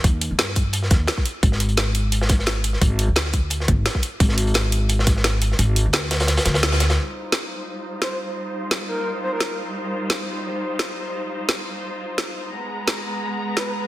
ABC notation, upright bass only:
X:1
M:4/4
L:1/16
Q:"Swing 16ths" 1/4=173
K:Eb
V:1 name="Upright bass" clef=bass
E,,3 G,,6- G,, E,,2 z4 | A,,,16 | A,,,3 D,,6- D,, A,,,2 z4 | A,,,16 |
A,,,3 D,,6 z D,,6 | z16 | z16 | z16 |
z16 | z16 |]